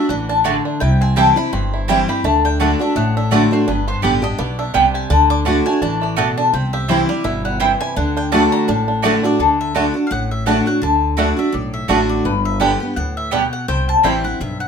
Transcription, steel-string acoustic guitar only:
0.00 0.10 D4 medium
0.10 0.44 E3 medium
0.46 0.80 D3 medium
0.81 1.50 C3 medium
1.16 1.36 E3 medium
1.16 1.36 G3 medium
1.16 1.37 C4 loud
1.16 1.35 E4 medium
1.36 1.53 C4 soft
1.36 1.52 E4 medium
1.53 2.21 G2 medium
1.88 2.08 E3 medium
1.88 2.08 G3 medium
1.88 2.08 C4 loud
1.88 2.07 E4 loud
2.08 2.24 C4 soft
2.08 2.24 E4 medium
2.24 2.59 D3 medium
2.60 2.79 D3 medium
2.60 2.80 A3 medium
2.60 2.80 D4 medium
2.60 2.78 F#4 medium
2.79 2.96 D4 medium
2.79 2.95 F#4 medium
2.96 3.64 A2 medium
3.31 3.51 D3 medium
3.31 3.51 A3 loud
3.31 3.52 D4 medium
3.31 3.50 F#4 medium
3.51 3.68 D4 medium
3.51 3.66 F#4 medium
3.68 4.36 G2 medium
4.02 4.22 D3 medium
4.02 4.23 G3 medium
4.02 4.23 B3 medium
4.02 4.21 G4 medium
4.22 4.39 B3 medium
4.22 4.38 G4 medium
4.38 4.73 B2 medium
4.74 5.09 C3 loud
5.10 5.45 D3 loud
5.46 5.65 D3 medium
5.46 5.66 A3 medium
5.46 5.66 D4 medium
5.46 5.65 F#4 medium
5.66 5.83 D4 medium
5.66 5.81 F#4 medium
5.83 6.16 E3 medium
6.18 6.52 B2 medium
6.54 7.22 C3 medium
6.89 7.08 E3 medium
6.89 7.08 G3 medium
6.89 7.09 C4 medium
6.89 7.07 E4 loud
7.09 7.25 C4 medium
7.09 7.24 E4 medium
7.24 7.59 B2 medium
7.60 7.95 C3 loud
7.96 8.31 D3 medium
8.32 8.66 D3 medium
8.32 8.67 A3 medium
8.32 8.67 D4 loud
8.32 8.67 F#4 loud
8.69 9.37 A2 loud
9.04 9.23 D3 loud
9.04 9.23 A3 loud
9.04 9.24 D4 loud
9.04 9.23 F#4 medium
9.24 9.40 D4 medium
9.24 9.39 F#4 medium
9.40 9.73 D3 medium
9.74 9.94 D3 medium
9.74 9.94 A3 medium
9.74 9.95 D4 loud
9.74 9.93 F#4 medium
9.94 10.11 D4 soft
9.94 10.10 F#4 medium
10.11 10.79 A2 medium
10.46 10.66 D3 medium
10.46 10.66 A3 medium
10.46 10.66 D4 loud
10.46 10.65 F#4 loud
10.66 10.82 D4 soft
10.66 10.81 F#4 medium
10.82 11.16 D3 medium
11.17 11.37 D3 medium
11.17 11.37 A3 medium
11.17 11.37 D4 medium
11.17 11.35 F#4 medium
11.37 11.54 D4 medium
11.37 11.53 F#4 medium
11.52 12.22 A2 medium
11.88 12.23 D3 medium
11.88 12.24 A3 medium
11.88 12.24 D4 medium
11.88 12.24 F#4 loud
12.25 12.94 G2 medium
12.60 12.80 D3 medium
12.60 12.80 G3 medium
12.60 12.80 B3 medium
12.60 12.79 G4 loud
12.80 12.97 B3 medium
12.80 12.96 G4 medium
12.97 13.31 A2 medium
13.32 13.67 B2 medium
13.68 14.37 C3 medium
14.04 14.23 E3 medium
14.04 14.24 G3 medium
14.04 14.24 C4 medium
14.04 14.23 E4 loud
14.24 14.41 C4 soft
14.24 14.39 E4 medium
14.41 14.68 G2 medium

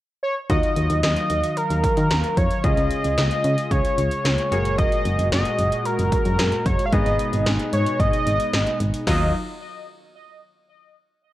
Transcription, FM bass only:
0.50 0.61 D#2 loud
0.77 0.88 D#2 loud
0.90 1.01 D#2 loud
1.03 1.15 D#2 loud
1.30 1.42 D#2 medium
1.70 1.82 D#2 medium
1.97 2.09 D#3 medium
2.11 2.22 D#2 medium
2.37 2.49 F2 medium
2.64 2.75 C#2 loud
2.78 2.89 C#2 medium
3.04 3.16 C#2 medium
3.18 3.29 C#2 loud
3.44 3.56 C#3 medium
3.71 3.83 C#2 loud
3.98 4.09 C#2 medium
4.25 4.36 C#2 loud
4.52 4.86 F#1 medium
5.05 5.17 F#1 loud
5.18 5.30 F#1 loud
5.32 5.43 F#1 loud
5.59 5.70 F#1 medium
5.99 6.10 F#1 medium
6.26 6.37 F#2 medium
6.39 6.50 F#2 loud
6.66 6.77 F#1 loud
6.93 7.04 G#1 loud
7.06 7.17 G#1 medium
7.33 7.44 G#1 loud
7.46 7.58 G#1 loud
7.73 7.84 G#2 medium
8.00 8.11 G#1 loud
8.27 8.38 G#1 medium
8.53 8.65 G#1 loud
8.80 8.92 G#1 loud
9.07 9.32 D#2 medium

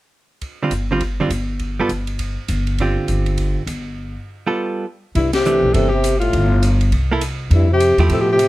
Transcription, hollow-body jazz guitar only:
0.63 0.72 D3 soft
0.63 0.72 G3 soft
0.63 0.72 C4 soft
0.63 0.72 F4 soft
0.91 1.01 D3 soft
0.91 1.01 G3 soft
0.91 1.01 C4 medium
0.91 1.01 F4 medium
1.20 1.30 D3 medium
1.20 1.30 G3 soft
1.20 1.30 C4 soft
1.20 1.31 F4 soft
1.80 1.89 G3 soft
1.80 1.90 B3 medium
1.80 1.90 F4 medium
1.80 1.90 A4 soft
2.80 3.61 D3 soft
2.80 3.62 C4 soft
2.80 3.62 F4 soft
2.80 3.62 G4 soft
4.47 4.84 G3 soft
4.47 4.85 B3 soft
4.47 4.85 F4 soft
4.47 4.85 A4 soft
5.46 5.89 E3 soft
5.46 5.90 A3 soft
5.46 5.90 D4 soft
7.12 7.22 A#3 medium
7.12 7.22 E4 medium
7.12 7.22 A4 medium
7.99 8.38 F3 medium
7.99 8.38 A3 medium
7.99 8.38 E4 medium
7.99 8.39 G4 medium

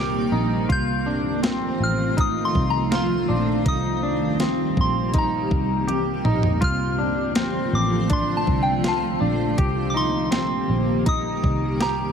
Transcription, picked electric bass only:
0.00 0.29 C2 medium
0.32 0.67 A#1 medium
0.70 1.77 C2 medium
1.80 2.51 A1 medium
2.55 3.25 C2 medium
3.29 3.64 A#1 medium
3.66 4.73 C2 medium
4.77 5.47 A#1 medium
5.51 6.21 C2 medium
6.25 6.60 A#1 medium
6.62 7.69 C2 medium
7.73 8.44 A1 medium
8.47 9.18 C2 medium
9.21 9.56 A#1 medium
9.58 10.65 C2 medium
10.69 11.40 A#1 medium
11.44 12.12 C2 medium

